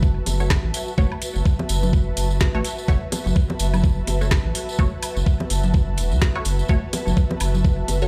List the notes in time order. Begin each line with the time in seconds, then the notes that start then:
Already playing: F#1 F#4 B4 E5 A5
0.03 kick, tambourine
0.26 F#1, open hi-hat, tambourine, low bongo
0.40 A3 F#4 C#5, tambourine
0.50 kick, snare, tambourine
0.64 A1
0.74 open hi-hat, tambourine
0.88 tambourine
0.98 F#1 A3 F#4 C#5, kick, tambourine
1.12 high woodblock
1.22 open hi-hat, tambourine
1.35 F#1, tambourine
1.46 kick, tambourine
1.59 low bongo
1.69 F#1, open hi-hat, tambourine
1.83 tambourine, low conga
1.93 kick, tambourine
2.17 F#1, open hi-hat, tambourine
2.31 tambourine
2.40 kick, snare, tambourine, high woodblock
2.54 A1 A3 F#4 C#5
2.65 open hi-hat, tambourine
2.78 tambourine
2.88 F#1 A3 F#4 C#5, kick, tambourine
3.12 open hi-hat, tambourine, low bongo
3.26 F#1, tambourine, low conga
3.36 kick, tambourine
3.50 low bongo
3.59 F#1, open hi-hat, tambourine
3.74 tambourine, low conga, high woodblock
3.84 kick, tambourine
4.07 F#1, open hi-hat, tambourine, low bongo
4.21 A3 F#4 C#5, tambourine
4.31 kick, snare, tambourine
4.45 A1
4.55 open hi-hat, tambourine
4.69 tambourine
4.79 F#1 A3 F#4 C#5, kick, tambourine
5.03 open hi-hat, tambourine, high woodblock
5.16 F#1, tambourine
5.26 kick, tambourine
5.40 low bongo
5.50 F#1, open hi-hat, tambourine
5.63 tambourine, low conga
5.74 kick, tambourine
5.97 E1, open hi-hat, tambourine
6.11 C#2, tambourine
6.22 kick, snare
6.35 A3 F#4 C#5, high woodblock
6.45 F#1, open hi-hat, tambourine
6.59 tambourine
6.68 F#1 A3 F#4 C#5, kick, tambourine
6.93 open hi-hat, tambourine, low bongo
7.07 F#1, tambourine, low conga
7.17 kick
7.31 low bongo
7.40 F#1, open hi-hat, tambourine, high woodblock
7.55 tambourine, low conga
7.64 kick, tambourine
7.88 F#1, open hi-hat, tambourine, low bongo
8.02 A3 F#4 C#5, tambourine